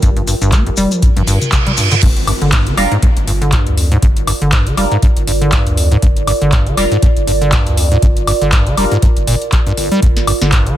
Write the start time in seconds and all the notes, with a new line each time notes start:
Already playing: G3 F4 G4 A#4 G5
0.02 G1 G2, kick, closed hi-hat, maracas
0.17 G2, closed hi-hat
0.27 G2, open hi-hat, maracas
0.41 G1 G2, closed hi-hat, maracas
0.52 A#3, kick, clap, closed hi-hat, maracas
0.67 F2, closed hi-hat
0.77 F1 G3, open hi-hat, maracas
0.92 F3, closed hi-hat, maracas
1.02 F2, kick, closed hi-hat, high tom, reverse cymbal, maracas
1.16 G1 G2, closed hi-hat, high tom
1.27 G1 G2, open hi-hat, maracas
1.41 closed hi-hat, mid tom, maracas
1.52 kick, clap, closed hi-hat, mid tom, maracas
1.66 G3, closed hi-hat, mid tom
1.77 G2, mid tom, open hi-hat, maracas
1.91 D3, closed hi-hat, mid tom, maracas
2.02 G1 G2 F4, kick, closed hi-hat, crash, downlifter
2.17 closed hi-hat
2.27 G2 D5, open hi-hat, high woodblock
2.42 G1 D3, closed hi-hat
2.52 G2, kick, clap, closed hi-hat
2.66 D3, closed hi-hat
2.77 F1 G3 D4 F4 A#4, open hi-hat, high woodblock
2.87 A#4
2.92 G#2, closed hi-hat
3.02 G2, kick, closed hi-hat
3.17 G1, closed hi-hat
3.27 G2, open hi-hat
3.42 D3, closed hi-hat
3.52 G2, kick, clap, closed hi-hat
3.67 D2, closed hi-hat
3.77 F2, open hi-hat
3.92 G#2, closed hi-hat
4.02 G1 G2, kick, closed hi-hat
4.17 closed hi-hat
4.27 G2, open hi-hat, high woodblock
4.42 G1 D3, closed hi-hat
4.52 G2, kick, clap, closed hi-hat
4.67 D3, closed hi-hat
4.77 F1 G3 D4 F4 A#4, open hi-hat, high woodblock
4.92 G#2, closed hi-hat
5.02 G2, kick, closed hi-hat
5.17 G1, closed hi-hat
5.27 G2, open hi-hat
5.42 D3, closed hi-hat
5.52 G2, kick, clap, closed hi-hat
5.67 D2, closed hi-hat
5.77 F2, open hi-hat
5.92 G#2, closed hi-hat
6.02 G1 G2, kick, closed hi-hat
6.17 closed hi-hat
6.27 G2, open hi-hat, high woodblock
6.42 G1 D3, closed hi-hat
6.52 G2, kick, clap, closed hi-hat
6.66 D3, closed hi-hat
6.77 F1 G3 D4 F4 A#4, open hi-hat, high woodblock
6.91 G#2, closed hi-hat
7.02 G2, kick, closed hi-hat
7.17 G1, closed hi-hat
7.27 G2, open hi-hat
7.41 D3, closed hi-hat
7.52 G2, kick, clap, closed hi-hat
7.67 D2, closed hi-hat
7.77 F2, open hi-hat
7.92 G#2, closed hi-hat
8.02 G1 G2, kick, closed hi-hat
8.17 closed hi-hat
8.27 G2, open hi-hat, high woodblock
8.42 G1 D3, closed hi-hat
8.52 G2, kick, clap, closed hi-hat
8.67 D3, closed hi-hat
8.77 F1 G3 D4 F4 A#4, open hi-hat, high woodblock
8.92 G#2, closed hi-hat
9.02 G2, kick, closed hi-hat
9.17 G1, closed hi-hat
9.27 G1 A#2, open hi-hat
9.42 closed hi-hat
9.52 kick, clap, closed hi-hat
9.67 G2, closed hi-hat
9.77 G1, open hi-hat
9.92 G3, closed hi-hat
10.02 G1 G2, kick, closed hi-hat
10.17 snare, closed hi-hat
10.27 G2 C5, open hi-hat, high woodblock
10.41 G1 D3, snare, closed hi-hat
10.52 G2, kick, clap, closed hi-hat
10.67 D3, closed hi-hat